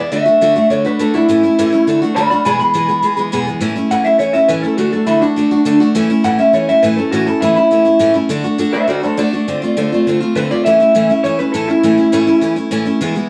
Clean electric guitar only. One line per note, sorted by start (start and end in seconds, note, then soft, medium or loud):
0.00 0.12 D5 medium
0.13 0.69 E5 loud
0.71 0.85 C#5 loud
0.86 1.00 B4 medium
1.00 1.14 A4 loud
1.15 1.99 E4 loud
2.15 2.29 D5 medium
2.15 2.30 B5 loud
2.30 2.44 D5 medium
2.30 2.45 B5 medium
2.45 2.59 G#5 medium
2.45 2.59 B5 medium
2.60 3.45 B5 loud
3.91 4.05 F#5 loud
4.05 4.19 E5 medium
4.19 4.34 C#5 loud
4.33 4.48 E5 medium
4.48 4.63 B4 medium
4.62 4.77 A4 medium
4.77 4.92 F#4 medium
4.93 5.07 A4 medium
5.07 5.21 E4 loud
5.21 5.78 D4 loud
6.24 6.39 F#5 loud
6.40 6.54 E5 medium
6.54 6.68 C#5 medium
6.69 6.83 E5 medium
6.83 6.97 B4 medium
6.97 7.12 A4 medium
7.12 7.26 F#4 medium
7.26 7.41 A4 medium
7.40 7.55 E4 loud
7.56 8.13 E4 loud
8.73 8.88 C5 loud
8.73 8.88 E5 loud
8.88 9.02 F#4 medium
8.88 9.03 D5 loud
9.03 9.18 A4 medium
9.03 9.18 C5 medium
9.18 10.04 D5 loud
10.36 10.50 B4 loud
10.51 10.64 D5 loud
10.65 11.22 E5 loud
11.24 11.38 C#5 loud
11.39 11.52 B4 medium
11.53 11.68 A4 loud
11.68 12.54 E4 loud